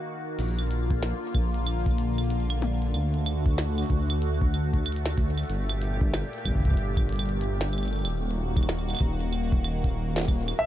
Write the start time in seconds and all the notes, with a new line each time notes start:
Already playing: D#3 A#3 F#4
0.39 A#1 D3 A#3 F4, closed hi-hat, crash
0.49 closed hi-hat
0.59 closed hi-hat, claves
0.71 closed hi-hat
0.90 kick, closed hi-hat
1.03 snare, closed hi-hat
1.34 A#1, kick, closed hi-hat, claves
1.54 closed hi-hat
1.67 closed hi-hat, claves
1.86 kick, closed hi-hat
1.98 closed hi-hat
2.18 closed hi-hat, claves
2.24 closed hi-hat
2.30 closed hi-hat
2.40 closed hi-hat
2.50 closed hi-hat, claves
2.62 closed hi-hat, high tom
2.82 closed hi-hat
2.94 D2 A3 F#4, closed hi-hat, claves
3.14 closed hi-hat
3.26 closed hi-hat, claves
3.46 kick, closed hi-hat
3.58 snare, closed hi-hat
3.78 closed hi-hat, claves
3.86 D2, kick, closed hi-hat
3.90 closed hi-hat
4.10 closed hi-hat, claves
4.22 closed hi-hat
4.42 kick
4.54 closed hi-hat, claves
4.73 kick, closed hi-hat
4.86 closed hi-hat, claves
4.92 closed hi-hat
4.96 closed hi-hat
5.06 snare, closed hi-hat
5.18 kick, closed hi-hat
5.38 closed hi-hat, claves
5.39 closed hi-hat
5.44 closed hi-hat
5.46 closed hi-hat
5.48 G1 A#2 G4, closed hi-hat
5.50 closed hi-hat
5.69 claves
5.82 closed hi-hat
6.01 kick
6.14 snare, closed hi-hat, claves
6.33 closed hi-hat
6.45 G1, kick, closed hi-hat, claves
6.50 kick
6.55 kick
6.60 kick
6.65 kick, closed hi-hat
6.68 kick
6.71 kick
6.74 kick, closed hi-hat
6.97 kick, closed hi-hat, claves
7.09 closed hi-hat
7.13 closed hi-hat
7.16 closed hi-hat
7.19 closed hi-hat, claves
7.26 closed hi-hat
7.29 closed hi-hat
7.41 closed hi-hat
7.61 snare, closed hi-hat
7.73 closed hi-hat, claves
7.78 claves
7.83 claves
7.88 claves
7.93 closed hi-hat, claves
7.96 claves
7.99 claves
8.02 D#1 D#3 A#3 F#4, closed hi-hat, claves
8.05 claves
8.31 closed hi-hat
8.56 kick, closed hi-hat, claves
8.63 claves
8.69 snare, closed hi-hat, claves
8.79 claves
8.89 closed hi-hat, claves
8.91 claves
8.95 claves
8.97 claves
8.99 D#1, kick, closed hi-hat, claves
9.21 closed hi-hat
9.33 closed hi-hat, claves
9.52 kick, closed hi-hat
9.64 claves
9.84 kick, closed hi-hat
10.16 snare, closed hi-hat
10.18 snare
10.20 snare
10.21 snare
10.23 snare
10.25 snare
10.27 D#1, kick, snare, closed hi-hat, claves
10.48 claves
10.59 A#1 D3 F4 E5, closed hi-hat